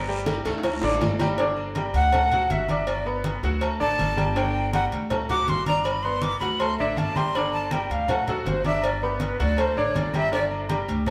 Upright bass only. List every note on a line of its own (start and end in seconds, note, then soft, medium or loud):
0.00 0.39 G1 loud
0.45 0.80 D2 medium
0.82 1.00 A1 medium
1.01 1.88 G1 loud
1.94 2.46 D2 medium
2.50 3.37 G1 medium
3.43 3.78 D2 medium
3.80 3.98 A1 medium
3.99 4.86 G1 loud
4.91 5.44 D2 medium
5.47 6.35 G1 medium
6.41 6.76 D2 medium
6.78 6.96 A1 medium
6.97 7.84 G1 medium
7.90 8.42 D2 medium
8.46 9.33 G1 loud
9.40 9.74 D2 medium
9.77 9.94 A1 medium
9.95 10.83 G1 medium
10.88 11.10 D2 loud